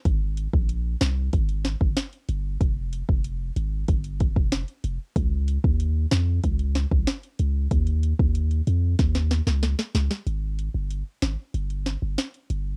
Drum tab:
HH |x-x-x-x-xxx-xxx-|x-x-x-x-xxx-xxx-|x-x-x-x-xxx-xxx-|xxx-xxx-xxx-xxx-|
SD |------o---o-o---|------------o---|------o---o-o---|--------oooooooo|
BD |o--o----o--o----|o--o----o-oo----|o--o----o--o----|o--o----o-------|

HH |x-x-x-x-xxx-xxx-|
SD |------o---o-o---|
BD |----------------|